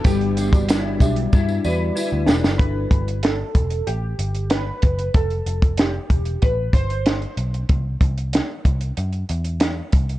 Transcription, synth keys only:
\new Staff \with { instrumentName = "Synth keys" } { \time 4/4 \key g \major \tempo 4 = 94 g'2 r2 | b'4 a'4 g'4 b'4 | a'4 g'4 b'8 c''4 r8 | r1 | }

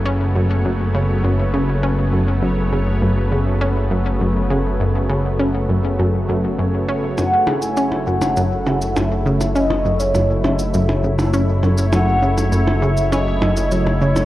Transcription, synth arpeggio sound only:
\new Staff \with { instrumentName = "Synth arpeggio sound" } { \clef bass \time 4/4 \key fis \minor \tempo 4 = 101 cis'8 fis,8 fis,8 cis8 fis,8 cis8 cis'8 fis,8 | fis,8 cis8 fis,8 cis8 cis'8 fis,8 fis,8 cis8 | fis,8 cis8 cis'8 fis,8 fis,8 fis,8 fis,8 cis'8 | fis,8 cis8 cis'8 fis,8 fis,8 cis8 fis,8 cis8 |
cis'8 fis,8 fis,8 cis8 fis,8 cis8 cis'8 fis,8 | fis,8 cis8 fis,8 cis8 cis'8 fis,8 fis,8 cis8 | }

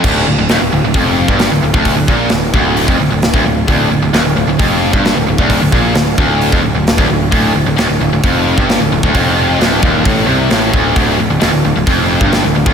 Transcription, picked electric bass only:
\new Staff \with { instrumentName = "Picked electric bass" } { \clef bass \time 4/4 \key d \minor \tempo 4 = 132 d,,8 d,,16 d,,16 ees,,16 d,,16 d,,16 d,,16 f,,8. g,,8 d,,16 d,,16 d,,16~ | d,,16 d,,16 bes,,8 d,,8 d,,8. f,,16 d,,16 d,,8 d,,16 d,,8 | d,,8 d,,16 d,,16 ees,,16 d,,16 d,,16 d,,16 f,,8. g,,8 d,,16 d,,16 d,,16~ | d,,16 d,,16 bes,,8 d,,8 d,,8. f,,16 d,,16 d,,8 d,,16 d,,8 |
d,,8 d,,16 d,,16 ees,,16 d,,16 d,,16 d,,16 f,,8. g,,8 d,,16 d,,16 d,,16 | f,,4 d,,8 ees,,8 a,,8 c,8 a,,8 d,,8 | d,,8 d,,16 d,,16 ees,,16 d,,16 d,,16 d,,16 f,,8. g,,8 d,,16 d,,16 d,,16 | }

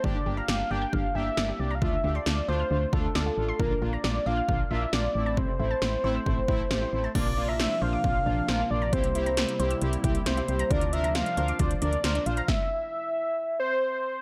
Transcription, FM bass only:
\new Staff \with { instrumentName = "FM bass" } { \clef bass \time 4/4 \key bes \lydian \tempo 4 = 135 g,,8 g,,8 g,,8 g,,8 g,,8 g,,8 g,,8 c,8 | d,8 d,8 d,8 d,8 d,8 d,8 d,8 a,,8 | bes,,8 bes,,8 bes,,8 bes,,8 bes,,8 bes,,8 bes,,8 a,,8~ | a,,8 a,,8 a,,8 a,,8 a,,8 a,,8 a,,8 a,,8 |
bes,,4~ bes,,16 r16 bes,,8 bes,,8 bes,,8 bes,,8 bes,,8 | c,4~ c,16 r16 c,8 c,8 c,8 c,8 c,8 | d,4~ d,16 r16 d,8 d,8 d,8 d,8 bes,,8 | r1 | }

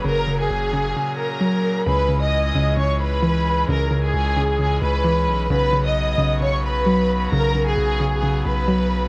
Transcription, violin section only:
\new Staff \with { instrumentName = "Violin section" } { \time 4/4 \key cis \dorian \tempo 4 = 132 <ais' ais''>8. <gis' gis''>4.~ <gis' gis''>16 <ais' ais''>4. | <b' b''>8. <dis'' dis'''>4~ <dis'' dis'''>16 <cis'' cis'''>8 <b' b''>4. | <ais' ais''>8. <gis' gis''>4.~ <gis' gis''>16 <b' b''>4. | <b' b''>8. <dis'' dis'''>4~ <dis'' dis'''>16 <cis'' cis'''>8 <b' b''>4. |
<ais' ais''>8. <gis' gis''>4.~ <gis' gis''>16 <b' b''>4. | }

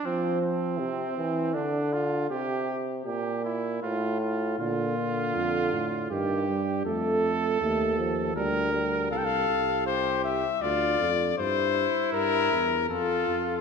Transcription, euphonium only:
\new Staff \with { instrumentName = "Euphonium" } { \clef bass \time 3/4 \key bes \major \tempo 4 = 80 f4 c8 e8 d4 | c4 bes,4 a,4 | d8 d4. ees8 g8 | a4 a8 f8 g8 g8 |
r2. | r2. | }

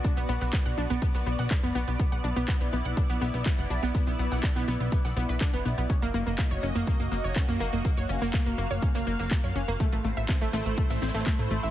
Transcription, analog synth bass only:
\new Staff \with { instrumentName = "Analog synth bass" } { \clef bass \time 4/4 \key b \phrygian \tempo 4 = 123 r16 b,,16 b,,16 b,,16 r16 b,,16 b,,16 b,,16 r16 b,,16 b,,16 b,,16 r16 fis,,16 b,,16 b,,16 | r16 b,,16 b,,16 b,,16 r16 b,,16 b,,16 b,,16 r16 b,,16 b,,16 b,,16 r16 fis,,16 b,,16 b,,16 | r16 b,,16 b,,16 b,,16 r16 b,,16 b,,16 b,,16 r16 b,,16 b,,16 b,,16 r16 fis,,16 b,,16 b,,16 | r16 fis,,16 fis,,16 fis,,16 r16 fis,,16 fis,,16 fis,,16 r16 fis,,16 fis,,16 fis,,16 r16 fis,16 fis,,16 fis,,16 |
r16 fis,,16 fis,,16 fis,,16 r16 fis,,16 fis,,16 fis,,16 r16 fis,,16 fis,,16 fis,,16 r16 fis,16 fis,,16 fis,,16 | r16 a,,16 a,,16 a,,16 r16 a,,16 a,,16 a,,16 r16 a,,16 a,,16 a,,16 r16 a,16 a,,16 a,,16 | }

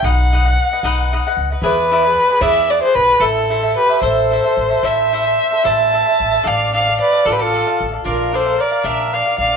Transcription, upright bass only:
\new Staff \with { instrumentName = "Upright bass" } { \clef bass \time 6/8 \key a \minor \tempo 4. = 75 b,,4. b,,4 cis,8 | e,4. e,4 b,,8 | a,,4. a,,4 a,,8 | a,,4. a,,4 a,,8 |
a,,4. a,,4 a,,8 | bes,,4. bes,,4 bes,,8 | }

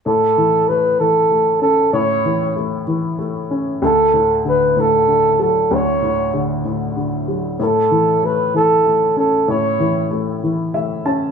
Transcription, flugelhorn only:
\new Staff \with { instrumentName = "Flugelhorn" } { \time 6/8 \key a \mixolydian \tempo 4. = 64 a'4 b'8 a'4 a'8 | cis''4 r2 | a'4 b'8 a'4 a'8 | cis''4 r2 |
a'4 b'8 a'4 a'8 | cis''4 r2 | }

